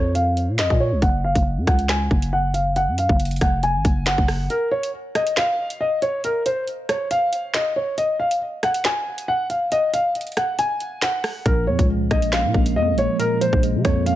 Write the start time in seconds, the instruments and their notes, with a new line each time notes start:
Already playing: 808-style bass F2, grand piano C#5
0.15 grand piano F5, closed hi-hat
0.37 closed hi-hat
0.48 808-style bass A#2
0.59 808-style bass F2, grand piano D#5, snare, clap, closed hi-hat
0.70 808-style bass A#2, kick
0.80 grand piano C#5
0.92 808-style bass C2
1.02 808-style bass F#1, grand piano F#5, kick, closed hi-hat
1.24 grand piano F5
1.35 808-style bass F#1, kick, closed hi-hat
1.57 808-style bass F#2
1.67 808-style bass C#2, grand piano F#5, kick, cross-stick, closed hi-hat
1.79 closed hi-hat
1.89 grand piano G#5, snare, clap
2.11 808-style bass F#1, kick
2.22 closed hi-hat
2.33 grand piano F#5
2.54 grand piano F5, closed hi-hat
2.76 grand piano F#5, closed hi-hat
2.88 808-style bass F#2
2.98 grand piano F5, closed hi-hat
3.09 808-style bass F#1, kick
3.20 closed hi-hat
3.25 closed hi-hat
3.31 closed hi-hat
3.36 closed hi-hat
3.41 808-style bass F1, grand piano F#5, kick, cross-stick, closed hi-hat
3.63 grand piano G#5, closed hi-hat
3.75 808-style bass G#1
3.85 808-style bass F#1, kick, closed hi-hat
4.06 grand piano F#5, snare, clap, closed hi-hat
4.18 808-style bass F#1, kick
4.28 cross-stick, open hi-hat
4.50 grand piano A#4, closed hi-hat
4.71 grand piano C#5
4.83 closed hi-hat
5.15 grand piano D#5, cross-stick, closed hi-hat
5.27 closed hi-hat
5.37 grand piano F5, snare, clap
5.70 closed hi-hat
5.80 grand piano D#5
6.02 grand piano C#5, closed hi-hat
6.24 grand piano A#4, closed hi-hat
6.46 grand piano C5, closed hi-hat
6.67 closed hi-hat
6.89 grand piano C#5, cross-stick, closed hi-hat
7.11 grand piano F5, closed hi-hat
7.33 closed hi-hat
7.54 grand piano D#5, snare, clap, closed hi-hat
7.76 grand piano C#5
7.98 grand piano D#5, closed hi-hat
8.20 grand piano F5
8.31 closed hi-hat
8.63 grand piano F#5, cross-stick, closed hi-hat
8.74 closed hi-hat
8.85 grand piano G#5, snare, clap
9.18 closed hi-hat
9.28 grand piano F#5
9.50 grand piano F5, closed hi-hat
9.72 grand piano D#5, closed hi-hat
9.93 grand piano F5, closed hi-hat
10.15 closed hi-hat
10.21 closed hi-hat
10.27 closed hi-hat
10.32 closed hi-hat
10.37 grand piano F#5, cross-stick, closed hi-hat
10.59 grand piano G#5, closed hi-hat
10.80 closed hi-hat
11.02 grand piano F#5, snare, clap, closed hi-hat
11.24 cross-stick, open hi-hat
11.46 808-style bass A#1, tine electric piano A#2, grand piano A#4, kick, closed hi-hat
11.67 808-style bass F2, tine electric piano F3, grand piano C#5
11.79 808-style bass C#2, kick, closed hi-hat
11.89 tine electric piano G#3
12.11 808-style bass A#1, tine electric piano A#3, grand piano D#5, kick, cross-stick, closed hi-hat
12.22 closed hi-hat
12.33 tine electric piano C#4, grand piano F5, snare, clap
12.44 808-style bass A#2
12.54 808-style bass A#1, tine electric piano A#3, kick
12.66 closed hi-hat
12.76 808-style bass F2, tine electric piano G#3, grand piano D#5
12.93 808-style bass A#1
12.98 tine electric piano F3, grand piano C#5, closed hi-hat
13.19 tine electric piano A#2, grand piano A#4, closed hi-hat
13.41 tine electric piano F3, grand piano C5, closed hi-hat
13.53 808-style bass A#1, kick
13.63 tine electric piano G#3, closed hi-hat
13.75 808-style bass C#3
13.85 808-style bass F2, tine electric piano A#3, grand piano C#5, kick, cross-stick, closed hi-hat
14.06 tine electric piano C#4, grand piano F5, closed hi-hat